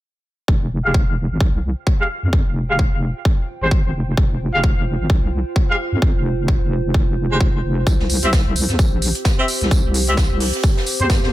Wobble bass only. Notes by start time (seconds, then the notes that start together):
0.48 F1
0.84 F1
1.31 G#1
1.41 C2
2.23 F2
2.46 F1
2.92 F1
3.61 G#1
3.94 F1
4.17 F1
4.54 F1
5.00 G#1
5.10 C2
5.92 F2
6.15 F1
6.61 F1
6.84 F1
7.08 F1
7.41 F1
7.64 F1
7.87 C2
8.23 C2
8.69 E2
8.79 A#1
9.61 C2
9.84 C2
10.30 C2
11.00 E2